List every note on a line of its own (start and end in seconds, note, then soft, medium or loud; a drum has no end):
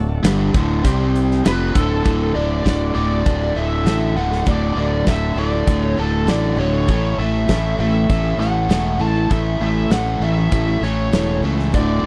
0.00 0.21 D1 medium
0.00 0.18 D2 medium
0.00 0.18 A2 medium
0.00 0.83 A3 medium
0.00 0.83 D4 medium
0.00 0.83 F#4 medium
0.00 0.83 A4 medium
0.23 0.52 G1 medium
0.23 0.53 G2 medium
0.23 0.53 D3 medium
0.23 0.53 G3 loud
0.23 snare loud
0.23 closed hi-hat medium
0.54 0.82 D1 loud
0.54 0.83 D2 medium
0.54 0.84 A2 medium
0.54 0.84 D3 medium
0.54 kick loud
0.54 closed hi-hat medium
0.83 1.41 C2 medium
0.83 1.43 C3 medium
0.83 1.44 G3 medium
0.83 1.44 C4 medium
0.83 1.44 G4 medium
0.83 1.44 C5 medium
0.83 kick loud
0.83 closed hi-hat loud
1.16 closed hi-hat medium
1.31 snare soft
1.44 1.73 F1 medium
1.44 1.74 F2 medium
1.44 1.74 C3 loud
1.44 1.74 F3 loud
1.44 2.04 A3 medium
1.44 2.05 D4 medium
1.44 2.04 F#4 medium
1.44 2.05 A4 medium
1.44 1.76 B4 medium
1.44 snare loud
1.44 closed hi-hat medium
1.74 2.03 D1 medium
1.74 2.03 D2 medium
1.74 2.03 A2 medium
1.74 2.04 D3 medium
1.74 2.32 A4 medium
1.74 kick loud
1.74 closed hi-hat medium
2.04 2.34 D1 medium
2.04 2.34 D2 medium
2.04 2.34 A2 medium
2.04 2.63 D3 medium
2.04 2.35 D3 medium
2.04 2.64 F#3 medium
2.04 2.66 A3 medium
2.04 2.65 F#4 medium
2.04 2.66 A4 medium
2.04 kick loud
2.04 closed hi-hat soft
2.35 2.64 D1 medium
2.35 2.64 D2 medium
2.35 2.64 A2 medium
2.35 2.65 D3 medium
2.35 2.94 D5 medium
2.64 2.94 D1 medium
2.64 2.94 D2 medium
2.64 2.94 A2 medium
2.64 2.95 D3 medium
2.64 2.93 F#3 medium
2.64 2.94 A3 medium
2.64 2.95 F#4 medium
2.64 2.96 A4 medium
2.64 kick medium
2.64 snare medium
2.64 closed hi-hat soft
2.94 3.24 D1 medium
2.94 3.24 D2 medium
2.94 3.25 A2 medium
2.94 3.25 D3 medium
2.94 3.10 F#3 medium
2.94 3.11 A3 medium
2.94 3.10 F#4 medium
2.94 3.09 A4 medium
2.94 3.57 D5 medium
3.10 3.42 A3 soft
3.10 3.41 F#4 soft
3.10 3.41 A4 soft
3.25 3.55 D1 medium
3.25 3.54 D2 medium
3.25 3.55 A2 medium
3.25 3.55 D3 medium
3.25 kick loud
3.25 closed hi-hat medium
3.42 3.56 A3 soft
3.42 3.56 F#4 soft
3.42 3.56 A4 soft
3.55 3.84 D1 medium
3.55 3.84 D2 medium
3.55 3.84 A2 medium
3.55 3.86 D3 medium
3.55 3.85 F#3 soft
3.55 3.86 A3 soft
3.55 3.86 F#4 medium
3.55 3.86 A4 soft
3.55 4.16 E5 medium
3.85 4.14 A1 medium
3.85 4.14 D2 medium
3.85 4.16 A2 medium
3.85 4.16 D3 medium
3.85 4.16 F#3 medium
3.85 4.16 A3 medium
3.85 4.17 F#4 medium
3.85 4.17 A4 medium
3.85 snare medium
3.85 closed hi-hat medium
4.15 4.45 D1 medium
4.15 4.46 D2 medium
4.15 4.46 A2 medium
4.15 4.46 D3 medium
4.15 4.32 F#3 medium
4.15 4.32 A3 medium
4.15 4.31 F#4 medium
4.15 4.30 A4 medium
4.15 4.48 F#5 medium
4.31 4.45 A3 soft
4.31 4.45 F#4 soft
4.31 4.45 A4 soft
4.31 snare soft
4.45 4.75 D1 medium
4.45 4.75 D2 medium
4.45 4.76 A2 medium
4.45 5.05 D3 medium
4.45 4.76 D3 loud
4.45 5.06 F#3 medium
4.45 5.07 A3 medium
4.45 5.06 F#4 medium
4.45 5.08 A4 medium
4.45 4.77 D5 medium
4.45 kick medium
4.45 closed hi-hat medium
4.75 5.05 D1 medium
4.75 5.06 D2 medium
4.75 5.07 A2 medium
4.75 5.07 D3 medium
4.75 5.06 D5 medium
5.07 5.35 D1 medium
5.07 5.36 D2 medium
5.07 5.37 A2 medium
5.07 5.37 D3 medium
5.07 5.35 F#3 medium
5.07 5.37 A3 medium
5.07 5.37 F#4 medium
5.07 5.37 A4 medium
5.07 5.39 E5 medium
5.07 kick medium
5.07 snare medium
5.07 closed hi-hat medium
5.35 5.65 D1 medium
5.35 5.66 D2 medium
5.35 5.67 A2 medium
5.35 5.67 D3 medium
5.35 5.52 F#3 medium
5.35 5.53 A3 medium
5.35 5.52 F#4 medium
5.35 5.51 A4 medium
5.35 5.82 D5 medium
5.52 5.82 A3 soft
5.52 5.81 F#4 soft
5.52 5.81 A4 soft
5.67 5.96 D1 medium
5.67 5.96 D2 medium
5.67 5.97 A2 medium
5.67 5.97 D3 medium
5.67 kick loud
5.67 closed hi-hat medium
5.82 5.97 A3 soft
5.82 5.97 F#4 soft
5.82 5.97 A4 soft
5.82 6.00 C#5 medium
5.97 6.27 D1 medium
5.97 6.26 D2 medium
5.97 6.26 A2 medium
5.97 6.27 D3 medium
5.97 6.26 F#3 soft
5.97 6.27 A3 soft
5.97 6.27 F#4 medium
5.97 6.27 A4 medium
5.97 6.30 A4 medium
6.27 6.56 A1 medium
6.27 6.56 D2 medium
6.27 6.57 A2 medium
6.27 6.58 D3 medium
6.27 6.55 F#3 medium
6.27 6.56 A3 medium
6.27 6.56 F#4 medium
6.27 6.57 A4 medium
6.27 6.57 D5 medium
6.27 snare medium
6.27 closed hi-hat medium
6.56 6.87 D1 medium
6.56 6.86 D2 medium
6.56 6.87 A2 medium
6.56 6.87 D3 medium
6.56 6.73 F#3 medium
6.56 6.73 A3 medium
6.56 6.72 F#4 medium
6.56 6.71 A4 medium
6.56 7.21 C#5 medium
6.73 6.87 A3 soft
6.73 6.88 F#4 soft
6.73 6.88 A4 soft
6.87 7.17 A1 medium
6.87 7.46 A2 medium
6.87 7.19 A2 medium
6.87 7.47 E3 medium
6.87 7.19 E3 loud
6.87 7.48 A3 medium
6.87 7.20 A3 loud
6.87 7.48 C#4 medium
6.87 7.48 E4 medium
6.87 7.49 A4 medium
6.87 kick loud
6.87 closed hi-hat medium
7.18 7.47 A1 medium
7.18 7.49 A2 medium
7.18 7.50 E3 medium
7.18 7.50 A3 medium
7.18 7.79 E5 medium
7.48 7.78 A1 medium
7.48 7.79 A2 medium
7.48 7.79 E3 medium
7.48 7.77 A3 medium
7.48 7.80 A3 medium
7.48 7.78 C#4 medium
7.48 7.78 E4 medium
7.48 7.79 A4 medium
7.48 kick medium
7.48 snare medium
7.48 closed hi-hat soft
7.78 8.08 A1 medium
7.78 8.09 A2 medium
7.78 8.09 E3 medium
7.78 7.94 A3 medium
7.78 8.11 A3 medium
7.78 7.93 C#4 medium
7.78 7.92 E4 medium
7.78 7.92 A4 medium
7.78 8.40 E5 medium
7.93 8.23 A3 soft
7.93 8.23 C#4 soft
7.93 8.22 E4 soft
7.93 8.21 A4 soft
8.10 8.37 A1 medium
8.10 8.38 A2 medium
8.10 8.39 E3 loud
8.10 8.41 A3 loud
8.10 kick loud
8.10 closed hi-hat medium
8.23 8.38 A3 soft
8.23 8.38 C#4 soft
8.23 8.39 E4 medium
8.23 8.39 A4 soft
8.38 8.68 A1 medium
8.38 8.68 A2 medium
8.38 8.68 E3 medium
8.38 8.69 A3 soft
8.38 8.70 A3 medium
8.38 8.69 C#4 soft
8.38 8.69 E4 medium
8.38 8.69 A4 medium
8.38 9.02 F#5 loud
8.38 snare soft
8.69 8.99 E1 medium
8.69 9.00 A2 medium
8.69 8.98 A2 medium
8.69 8.99 E3 medium
8.69 9.00 E3 medium
8.69 8.97 A3 medium
8.69 9.00 A3 medium
8.69 8.99 C#4 medium
8.69 8.99 E4 medium
8.69 9.00 A4 medium
8.69 snare medium
8.69 closed hi-hat medium
8.99 9.29 A1 medium
8.99 9.29 A2 medium
8.99 9.29 E3 medium
8.99 9.15 A3 medium
8.99 9.31 A3 medium
8.99 9.15 C#4 medium
8.99 9.15 E4 medium
8.99 9.14 A4 medium
8.99 9.29 A5 medium
9.15 9.30 A3 soft
9.15 9.30 C#4 soft
9.15 9.30 E4 medium
9.15 9.30 A4 medium
9.30 9.59 A1 medium
9.30 9.59 A2 medium
9.30 9.89 A2 medium
9.30 9.89 E3 medium
9.30 9.60 E3 loud
9.30 9.90 A3 medium
9.30 9.61 A3 loud
9.30 9.90 C#4 medium
9.30 9.90 E4 medium
9.30 9.91 A4 medium
9.30 9.61 E5 medium
9.30 kick loud
9.30 closed hi-hat medium
9.60 9.90 A1 medium
9.60 9.89 A2 medium
9.60 9.90 E3 medium
9.60 9.92 A3 medium
9.60 9.92 E5 medium
9.90 10.20 A1 medium
9.90 10.20 A2 medium
9.90 10.22 A2 medium
9.90 10.21 E3 medium
9.90 10.20 A3 medium
9.90 10.22 A3 medium
9.90 10.21 C#4 medium
9.90 10.21 E4 medium
9.90 10.22 A4 medium
9.90 10.20 F#5 medium
9.90 snare medium
9.90 closed hi-hat medium
10.20 10.50 A1 medium
10.20 10.50 A2 medium
10.20 10.51 E3 medium
10.20 10.37 A3 medium
10.20 10.52 A3 medium
10.20 10.37 C#4 medium
10.20 10.36 E4 medium
10.20 10.35 A4 medium
10.20 10.85 E5 medium
10.36 10.67 A3 soft
10.36 10.67 C#4 soft
10.36 10.67 E4 soft
10.36 10.65 A4 soft
10.51 10.81 A1 medium
10.51 10.82 A2 medium
10.51 10.83 E3 medium
10.51 10.84 A3 medium
10.51 kick medium
10.51 closed hi-hat medium
10.66 10.79 A3 soft
10.66 10.81 C#4 soft
10.66 10.82 E4 soft
10.66 10.82 A4 soft
10.81 11.11 A1 medium
10.81 11.12 A2 medium
10.81 11.13 E3 medium
10.81 11.12 A3 medium
10.81 11.14 A3 medium
10.81 11.11 C#4 soft
10.81 11.12 E4 medium
10.81 11.12 A4 medium
10.81 11.40 C#5 medium
10.81 snare soft
11.12 11.40 E1 medium
11.12 11.43 A2 medium
11.12 11.43 E3 medium
11.12 11.41 A3 medium
11.12 11.45 A3 medium
11.12 11.42 C#4 medium
11.12 11.42 E4 medium
11.12 11.44 A4 medium
11.12 snare loud
11.12 closed hi-hat medium
11.41 11.71 C#2 medium
11.41 11.72 A2 medium
11.41 11.73 E3 medium
11.41 11.57 A3 medium
11.41 11.57 C#4 medium
11.41 11.57 E4 medium
11.41 11.55 A4 medium
11.45 11.75 A3 medium
11.57 11.71 A3 soft
11.57 11.72 C#4 soft
11.57 11.72 E4 soft
11.57 11.73 A4 soft
11.57 snare soft
11.72 12.02 D1 medium
11.72 12.05 D2 loud
11.72 12.04 A2 medium
11.72 12.06 D3 medium
11.72 12.06 D3 loud
11.72 12.06 A3 medium
11.72 12.06 D4 medium
11.72 12.06 F#4 medium
11.72 12.06 A4 medium
11.72 12.05 D5 medium
11.72 kick medium
11.72 closed hi-hat medium
12.03 12.06 D1 medium